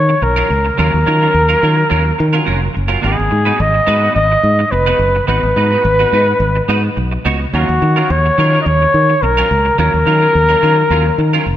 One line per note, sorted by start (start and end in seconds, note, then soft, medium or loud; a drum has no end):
0.00 0.13 D#3 loud
0.00 0.24 C#5 loud
0.09 muted clean electric guitar stroke soft
0.22 0.42 B1 medium
0.22 0.79 A#4 medium
0.22 muted clean electric guitar stroke soft
0.36 0.49 F#3 medium
0.36 0.50 C#4 medium
0.36 0.50 F4 medium
0.36 0.50 A#4 medium
0.50 0.70 C#2 medium
0.50 muted clean electric guitar stroke soft
0.65 muted clean electric guitar stroke soft
0.78 0.89 D#2 loud
0.78 0.98 F#3 medium
0.78 0.93 C#4 medium
0.78 0.92 F4 loud
0.78 0.92 A#4 medium
0.78 2.72 A#4 loud
0.93 1.03 D#2 medium
0.93 muted clean electric guitar stroke medium
1.06 1.26 D#3 loud
1.06 1.21 F#3 medium
1.06 1.21 C#4 medium
1.06 1.20 F4 medium
1.06 1.20 A#4 medium
1.21 1.33 F#3 soft
1.21 1.33 C#4 medium
1.21 1.33 F4 medium
1.21 1.34 A#4 medium
1.34 1.54 D#2 loud
1.34 muted clean electric guitar stroke soft
1.49 1.61 F#3 medium
1.49 1.61 C#4 soft
1.49 1.62 F4 medium
1.49 1.62 A#4 medium
1.62 1.82 D#3 medium
1.62 1.82 F#3 medium
1.62 1.76 C#4 medium
1.62 1.76 F4 medium
1.62 1.75 A#4 medium
1.77 muted clean electric guitar stroke medium
1.89 2.11 D#2 loud
1.89 2.10 F#3 medium
1.89 2.04 C#4 medium
1.89 2.03 F4 medium
1.89 2.03 A#4 medium
2.04 muted clean electric guitar stroke soft
2.19 2.39 D#3 loud
2.19 muted clean electric guitar stroke medium
2.33 2.44 F#3 medium
2.33 2.44 C#4 medium
2.33 2.45 F4 medium
2.33 2.45 A#4 medium
2.45 2.67 F1 medium
2.45 2.66 F#3 medium
2.45 2.60 C#4 medium
2.45 2.60 F4 medium
2.45 2.59 A#4 medium
2.61 muted clean electric guitar stroke medium
2.73 2.96 F#1 medium
2.73 muted clean electric guitar stroke soft
2.88 3.01 F#3 medium
2.88 3.02 C#4 medium
2.88 3.03 F4 medium
2.88 3.03 A#4 medium
3.02 3.14 G#1 loud
3.02 3.23 B3 medium
3.02 3.17 D#4 medium
3.02 3.16 F#4 medium
3.02 3.63 G#4 medium
3.02 3.16 B4 medium
3.17 3.28 G#1 medium
3.17 muted clean electric guitar stroke soft
3.30 3.51 G#2 loud
3.30 muted clean electric guitar stroke soft
3.45 3.58 B3 medium
3.45 3.58 D#4 medium
3.45 3.59 F#4 medium
3.45 3.59 B4 medium
3.59 3.79 G#1 loud
3.59 4.15 D#5 loud
3.59 muted clean electric guitar stroke soft
3.74 muted clean electric guitar stroke soft
3.87 4.07 G#2 loud
3.87 4.03 B3 medium
3.87 4.03 D#4 medium
3.87 4.02 F#4 loud
3.87 4.01 B4 loud
4.03 4.16 B3 medium
4.03 4.16 D#4 soft
4.03 4.16 F#4 medium
4.03 4.16 B4 medium
4.15 4.35 G#1 loud
4.15 4.73 D#5 loud
4.15 muted clean electric guitar stroke soft
4.32 muted clean electric guitar stroke medium
4.43 4.63 G#2 loud
4.59 muted clean electric guitar stroke medium
4.71 4.92 F1 medium
4.71 5.28 B4 loud
4.71 muted clean electric guitar stroke soft
4.86 4.99 B3 medium
4.86 4.99 D#4 medium
4.86 4.99 F#4 medium
4.86 5.00 B4 medium
4.99 5.19 F#1 medium
4.99 muted clean electric guitar stroke soft
5.15 muted clean electric guitar stroke soft
5.27 5.39 G#1 medium
5.27 5.48 B3 medium
5.27 5.42 D#4 medium
5.27 5.42 F#4 medium
5.27 7.21 B4 loud
5.27 5.42 B4 medium
5.43 5.52 G#1 medium
5.43 muted clean electric guitar stroke medium
5.56 5.76 G#2 loud
5.56 5.71 B3 medium
5.56 5.70 D#4 medium
5.56 5.70 F#4 medium
5.56 5.70 B4 medium
5.71 5.84 B3 soft
5.71 5.84 D#4 medium
5.71 5.84 F#4 medium
5.71 5.84 B4 medium
5.85 6.04 G#1 loud
5.85 muted clean electric guitar stroke soft
5.99 6.11 B3 soft
5.99 6.12 D#4 medium
5.99 6.12 F#4 medium
5.99 6.12 B4 medium
6.12 6.32 G#2 medium
6.12 6.32 B3 medium
6.12 6.27 D#4 medium
6.12 6.27 F#4 medium
6.12 6.26 B4 medium
6.27 muted clean electric guitar stroke medium
6.40 6.60 G#1 loud
6.56 muted clean electric guitar stroke soft
6.68 6.88 G#2 medium
6.68 6.88 B3 medium
6.68 6.83 D#4 medium
6.68 6.83 F#4 medium
6.68 6.82 B4 medium
6.84 muted clean electric guitar stroke soft
6.96 7.16 B1 medium
6.96 muted clean electric guitar stroke soft
7.12 muted clean electric guitar stroke soft
7.25 7.45 C#2 medium
7.25 7.45 B3 medium
7.25 7.40 D#4 medium
7.25 7.39 F#4 medium
7.25 7.40 C#5 medium
7.40 muted clean electric guitar stroke soft
7.53 7.64 D#2 loud
7.53 7.73 F#3 medium
7.53 7.69 C#4 medium
7.53 7.68 F4 medium
7.53 8.12 F#4 loud
7.53 7.68 A#4 medium
7.69 7.78 D#2 medium
7.69 muted clean electric guitar stroke soft
7.82 8.01 D#3 loud
7.82 muted clean electric guitar stroke soft
7.96 8.08 F#3 soft
7.96 8.09 C#4 medium
7.96 8.09 F4 medium
7.96 8.09 A#4 medium
8.10 8.29 D#2 loud
8.10 8.60 C#5 loud
8.10 muted clean electric guitar stroke soft
8.26 muted clean electric guitar stroke soft
8.38 8.57 D#3 loud
8.38 8.53 F#3 medium
8.38 8.53 C#4 medium
8.38 8.53 F4 medium
8.38 8.52 A#4 medium
8.53 8.65 F#3 medium
8.53 8.66 C#4 medium
8.53 8.66 F4 medium
8.53 8.67 A#4 medium
8.62 8.68 D#5 medium
8.66 8.85 D#2 loud
8.66 9.24 C#5 loud
8.66 muted clean electric guitar stroke soft
8.82 muted clean electric guitar stroke soft
8.94 9.13 D#3 loud
9.10 muted clean electric guitar stroke soft
9.22 9.42 B1 medium
9.22 9.78 A#4 loud
9.22 muted clean electric guitar stroke soft
9.37 9.49 F#3 medium
9.37 9.50 C#4 medium
9.37 9.50 F4 medium
9.37 9.50 A#4 medium
9.50 9.70 C#2 medium
9.50 muted clean electric guitar stroke soft
9.65 muted clean electric guitar stroke soft
9.78 9.89 D#2 loud
9.78 9.98 F#3 medium
9.78 9.93 C#4 medium
9.78 9.92 F4 medium
9.78 11.57 A#4 loud
9.78 9.92 A#4 medium
9.93 10.03 D#2 medium
9.93 muted clean electric guitar stroke soft
10.06 10.26 D#3 loud
10.06 10.22 F#3 medium
10.06 10.21 C#4 medium
10.06 10.20 F4 medium
10.06 10.20 A#4 medium
10.21 10.33 F#3 medium
10.21 10.34 C#4 medium
10.21 10.34 F4 medium
10.21 10.34 A#4 medium
10.34 10.54 D#2 loud
10.34 muted clean electric guitar stroke soft
10.49 10.61 F#3 soft
10.49 10.61 C#4 medium
10.49 10.62 F4 medium
10.49 10.62 A#4 medium
10.62 10.82 D#3 medium
10.62 10.82 F#3 medium
10.62 10.77 C#4 medium
10.62 10.77 F4 medium
10.62 10.76 A#4 medium
10.78 muted clean electric guitar stroke medium
10.90 11.10 D#2 loud
10.90 11.10 F#3 medium
10.90 11.06 C#4 medium
10.90 11.06 F4 medium
10.90 11.05 A#4 medium
11.06 muted clean electric guitar stroke soft
11.18 11.38 D#3 loud
11.18 muted clean electric guitar stroke soft
11.33 11.45 F#3 medium
11.33 11.45 C#4 medium
11.33 11.46 F4 medium
11.33 11.46 A#4 medium
11.46 11.57 F1 medium
11.46 muted clean electric guitar stroke soft